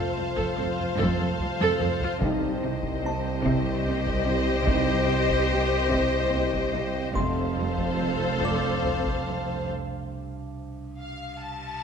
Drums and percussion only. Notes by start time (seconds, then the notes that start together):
0.37 taiko
0.98 taiko
1.40 taiko low
1.60 taiko high
1.80 taiko low-mid
2.01 taiko low
2.21 taiko
2.83 taiko
3.45 taiko
3.86 taiko low
4.06 taiko
4.67 taiko
5.29 taiko
5.91 taiko
6.32 taiko low
6.53 taiko
7.15 taiko
7.78 taiko
8.41 taiko
8.83 taiko low
9.05 taiko